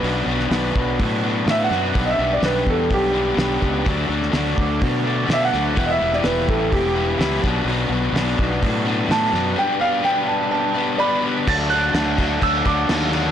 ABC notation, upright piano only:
X:1
M:4/4
L:1/16
Q:1/4=126
K:D
V:1 name="Upright piano"
B,4 z8 e [=f^f]3- | [=f^f] [_e=e]2 d B2 A2 G8 | z12 e [=f^f]3- | [=f^f] [_e=e]2 d B2 A2 G6 z2 |
z12 a4 | g2 =f2 g2 a2 a4 [db]2 z2 | a'2 f'6 e'2 d'6 |]